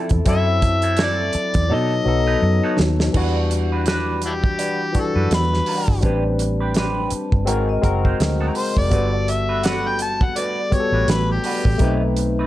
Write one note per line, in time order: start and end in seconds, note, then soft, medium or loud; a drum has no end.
0.00 0.12 F3 medium
0.00 0.28 F3 medium
0.00 0.11 C4 medium
0.00 0.26 C4 medium
0.00 0.11 E4 medium
0.00 0.27 E4 medium
0.00 0.28 A4 medium
0.09 0.24 E2 medium
0.09 muted clean electric guitar stroke soft
0.09 kick medium
0.09 closed hi-hat soft
0.25 1.31 F#2 loud
0.25 1.22 F#3 medium
0.25 0.48 F#3 medium
0.25 1.22 C4 medium
0.25 0.47 C4 medium
0.25 0.47 E4 medium
0.25 1.23 E4 medium
0.25 0.46 A4 medium
0.25 1.23 A4 medium
0.25 kick loud
0.25 closed hi-hat medium
0.29 1.04 E5 loud
0.47 muted clean electric guitar stroke soft
0.62 muted clean electric guitar stroke soft
0.62 kick medium
0.62 closed hi-hat medium
0.82 0.96 F#3 soft
0.82 0.97 C4 medium
0.82 0.96 E4 soft
0.82 0.96 A4 medium
0.82 closed hi-hat soft
0.97 1.32 F#3 medium
0.97 1.32 C4 medium
0.97 1.33 E4 medium
0.97 1.33 A4 medium
0.97 snare loud
0.97 closed hi-hat medium
1.03 1.75 D5 medium
1.33 muted clean electric guitar stroke soft
1.33 muted fingered electric bass stroke soft
1.33 closed hi-hat medium
1.54 1.72 E2 medium
1.54 muted clean electric guitar stroke soft
1.54 kick loud
1.54 closed hi-hat medium
1.69 1.99 B2 medium
1.69 2.00 F#3 medium
1.69 1.92 F#3 medium
1.69 2.00 B3 medium
1.69 1.93 B3 medium
1.69 1.93 D#4 medium
1.69 2.01 D#4 medium
1.69 1.93 A4 medium
1.69 2.02 A4 medium
1.74 2.81 D#5 loud
2.05 2.35 B1 medium
2.05 2.76 F#3 medium
2.05 2.77 B3 medium
2.05 2.77 D#4 medium
2.05 2.78 A4 medium
2.05 muted clean electric guitar stroke soft
2.27 2.41 F#3 soft
2.27 2.41 B3 soft
2.27 2.40 D#4 soft
2.27 2.40 B4 soft
2.42 2.59 F#2 medium
2.42 muted clean electric guitar stroke soft
2.64 2.78 F#3 medium
2.64 2.79 B3 medium
2.64 2.78 D#4 medium
2.64 2.79 A4 medium
2.79 3.08 D#2 medium
2.79 muted clean electric guitar stroke soft
2.79 snare medium
3.00 muted clean electric guitar stroke soft
3.00 snare medium
3.13 4.55 E2 medium
3.13 4.10 E3 medium
3.13 4.11 G3 medium
3.13 3.37 G3 medium
3.13 4.11 D4 medium
3.13 3.37 D4 medium
3.13 4.12 F#4 loud
3.13 3.36 F#4 medium
3.13 kick loud
3.13 crash medium
3.17 3.36 B4 medium
3.37 muted clean electric guitar stroke soft
3.51 muted clean electric guitar stroke soft
3.51 closed hi-hat medium
3.72 3.86 G3 soft
3.72 3.86 D4 medium
3.72 3.85 F#4 soft
3.72 3.85 B4 medium
3.86 4.21 G3 medium
3.86 4.21 D4 medium
3.86 4.21 F#4 medium
3.86 4.22 B4 medium
3.86 snare loud
3.86 closed hi-hat medium
4.22 4.33 D4 medium
4.22 4.33 E4 medium
4.22 5.01 G4 medium
4.22 muted clean electric guitar stroke soft
4.22 closed hi-hat medium
4.44 muted clean electric guitar stroke soft
4.44 kick loud
4.58 4.81 G3 medium
4.58 4.81 D4 medium
4.58 4.81 F#4 medium
4.58 4.82 B4 medium
4.58 closed hi-hat medium
4.93 5.64 E3 medium
4.93 5.65 G3 medium
4.93 5.66 D4 medium
4.93 5.66 F#4 medium
4.93 muted clean electric guitar stroke soft
4.93 muted fingered electric bass stroke soft
4.93 kick medium
4.93 closed hi-hat medium
4.99 5.33 A4 medium
5.16 5.28 F#2 medium
5.16 5.30 G3 soft
5.16 5.29 D4 soft
5.16 5.29 F#4 soft
5.16 5.29 B4 medium
5.31 5.60 E2 medium
5.31 6.01 B4 medium
5.31 snare loud
5.31 closed hi-hat medium
5.53 muted clean electric guitar stroke soft
5.53 snare soft
5.66 5.90 G3 medium
5.66 5.89 D4 medium
5.66 5.88 F#4 medium
5.66 5.88 B4 medium
5.66 open hi-hat medium
5.88 6.00 G1 medium
5.88 muted clean electric guitar stroke soft
5.88 kick medium
6.01 7.08 A1 loud
6.01 6.98 G3 medium
6.01 6.99 C4 medium
6.01 6.26 C4 medium
6.01 6.99 D4 medium
6.01 6.25 D4 medium
6.01 7.00 B4 medium
6.01 kick medium
6.01 closed hi-hat medium
6.05 6.24 G4 medium
6.05 6.24 B4 medium
6.25 muted clean electric guitar stroke soft
6.39 muted clean electric guitar stroke soft
6.39 closed hi-hat medium
6.60 6.74 C4 medium
6.60 6.74 D4 soft
6.60 6.74 G4 medium
6.60 6.73 B4 medium
6.74 7.10 C4 medium
6.74 7.10 D4 medium
6.74 7.10 G4 medium
6.74 7.10 B4 medium
6.74 snare loud
6.74 closed hi-hat medium
7.10 7.46 A5 medium
7.10 muted fingered electric bass stroke soft
7.10 muted clean electric guitar stroke soft
7.10 closed hi-hat medium
7.32 7.48 G1 medium
7.32 muted clean electric guitar stroke soft
7.32 kick loud
7.45 7.77 G#1 medium
7.45 7.70 F#3 medium
7.45 7.76 G#3 medium
7.45 7.77 C4 medium
7.45 7.70 C4 medium
7.45 7.70 D#4 medium
7.45 7.77 F#4 medium
7.45 7.78 A#4 medium
7.45 7.70 A#4 medium
7.45 7.67 G#5 medium
7.45 closed hi-hat medium
7.69 8.73 D#5 medium
7.81 8.12 F#1 medium
7.81 8.53 G#3 medium
7.81 8.54 C4 medium
7.81 8.54 F#4 medium
7.81 8.55 A#4 medium
7.81 muted clean electric guitar stroke soft
7.81 kick medium
7.81 closed hi-hat medium
8.04 8.18 F#3 soft
8.04 8.18 C4 soft
8.04 8.18 D#4 soft
8.04 8.17 C5 soft
8.04 kick medium
8.20 8.49 D2 medium
8.20 muted clean electric guitar stroke soft
8.20 snare loud
8.20 closed hi-hat medium
8.40 8.55 F#3 soft
8.40 8.55 C4 medium
8.40 8.55 D#4 medium
8.40 8.56 A#4 medium
8.55 8.80 C5 medium
8.55 muted clean electric guitar stroke soft
8.55 open hi-hat medium
8.76 8.92 F1 medium
8.76 9.32 D5 medium
8.76 muted clean electric guitar stroke soft
8.76 kick medium
8.89 10.32 G1 loud
8.89 9.87 G3 medium
8.89 9.14 A3 medium
8.89 9.87 B3 medium
8.89 9.13 D4 medium
8.89 9.88 F#4 medium
8.89 9.12 F#4 medium
8.89 9.88 A4 medium
8.89 kick medium
8.89 closed hi-hat medium
8.93 9.12 B4 medium
9.13 muted clean electric guitar stroke soft
9.28 9.67 E5 loud
9.28 muted clean electric guitar stroke soft
9.28 closed hi-hat medium
9.49 9.62 A3 soft
9.49 9.62 D4 soft
9.49 9.62 F#4 medium
9.49 9.62 B4 medium
9.64 9.98 A3 medium
9.64 9.98 D4 medium
9.64 9.98 F#4 medium
9.64 9.99 B4 medium
9.64 9.89 F#5 medium
9.64 snare loud
9.64 closed hi-hat medium
9.88 10.01 G5 loud
9.99 10.25 A5 loud
9.99 muted clean electric guitar stroke soft
9.99 closed hi-hat medium
10.21 10.39 F#5 medium
10.21 muted clean electric guitar stroke soft
10.21 kick loud
10.36 10.58 A3 medium
10.36 10.59 D4 medium
10.36 10.59 F#4 medium
10.36 10.59 B4 medium
10.36 10.75 D5 medium
10.36 closed hi-hat medium
10.70 11.42 G3 medium
10.70 11.42 B3 medium
10.70 11.43 F#4 medium
10.70 10.80 G4 medium
10.70 11.12 C#5 medium
10.70 muted clean electric guitar stroke soft
10.70 muted fingered electric bass stroke soft
10.70 kick medium
10.70 closed hi-hat medium
10.80 11.47 A4 medium
10.92 11.05 A1 medium
10.92 11.07 A3 soft
10.92 11.07 D4 soft
10.92 11.06 F#4 soft
10.92 11.06 B4 soft
11.08 11.37 A1 loud
11.08 11.30 B4 medium
11.08 snare loud
11.08 closed hi-hat medium
11.30 11.99 G4 medium
11.30 muted clean electric guitar stroke soft
11.44 11.67 A3 medium
11.44 11.67 D4 medium
11.44 11.67 F#4 medium
11.44 11.66 B4 medium
11.44 open hi-hat medium
11.65 11.78 A1 medium
11.65 muted clean electric guitar stroke soft
11.65 kick medium
11.78 12.47 B1 medium
11.78 12.47 A3 medium
11.78 12.03 A3 medium
11.78 12.47 C4 medium
11.78 12.47 D#4 medium
11.78 12.47 B4 medium
11.78 kick loud
11.78 closed hi-hat medium
11.83 12.03 C4 medium
11.83 12.03 D#4 medium
11.83 12.03 B4 medium
12.04 muted clean electric guitar stroke soft
12.17 muted clean electric guitar stroke soft
12.17 closed hi-hat medium
12.39 12.47 A3 soft
12.39 12.47 C4 medium
12.39 12.47 D#4 medium
12.39 12.47 B4 medium